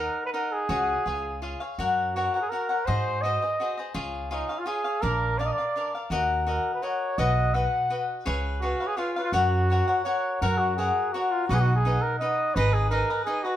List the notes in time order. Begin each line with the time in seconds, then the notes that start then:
Already playing: D#4 A#4 D#5 F#5
0.25 B4
0.32 D#4 A#4 D#5 F#5
0.53 G#4
0.69 C#2 F#4 G#4 C#5 F#5
1.06 C#2 F4 G#4 C#5 F5
1.42 F4 G#4 C#5 F5
1.60 G#4 C#5 F5
1.78 F#2 F#4 A#4 C#5 F#5
2.15 F#4 A#4 C#5 F#5
2.34 A#4 C#5 F#5
2.41 G#4
2.50 F#4 A#4 C#5 F#5
2.69 A#4 C#5 F#5
2.86 G#2 F#4 G#4 C5 D#5
3.22 F#4 G#4 C5 D#5
3.42 G#4 C5 D#5
3.60 F#4 G#4 C5 D#5
3.77 G#4 C5 D#5
3.94 C#2 F4 G#4 C#5 F5
4.31 D#4 F4 G#4 C#5 F5
4.49 G#4 C#5 F5
4.59 F4
4.66 F4 G#4 C#5 F5
4.84 G#4 C#5 F5
5.01 A#1 D4 A#4 D5 F5
5.38 D4 A#4 D5 F5
5.45 D#5
5.52 D5
5.58 A#4 D5 F5
5.76 D4 A#4 D5 F5
5.95 A#4 D5 F5
6.10 D#2 F#4 A#4 D#5 F#5
6.47 F#4 A#4 D#5 F#5
6.74 B4
6.82 F#4 A#4 C#5 D#5 F#5
7.18 B1 F#4 B4 D#5 F#5
7.54 F#4 B4 D#5 F#5
7.90 F#4 B4 D#5 F#5
8.26 C#2 G#4 B4 C#5 F5
8.60 F#4 G#4 B4 C#5 F5
8.80 B4 C#5 F5
8.87 G#4
8.97 F4 G#4 B4 C#5 F5
9.16 B4 C#5 F5
9.24 F4
9.32 F#2 F#4 A#4 C#5 F#5
9.70 F#4 A#4 C#5 F#5
9.88 A#4 C#5 F#5
10.04 F#4 A#4 C#5 F#5
10.41 F#2 F#4 A#4 C#5 F#5
10.58 F#4
10.77 F#4 G#4 A#4 C#5 F#5
11.13 F#4 A#4 C#5 F#5
11.31 F4
11.48 B1 D#4 F#4 B4 D#5 F#5
11.54 G#4
11.61 F#4
11.76 G#4
11.85 D#4 B4 D#5 F#5
12.02 A#4
12.19 D#4 B4 D#5 F#5
12.55 G#1 D#4 G#4 B4 D#5
12.73 G#4
12.90 D#4 G#4 A#4 B4 D#5
13.10 G#4 B4 D#5
13.25 D#4 G#4 B4 D#5
13.44 F#4 G#4 B4 D#5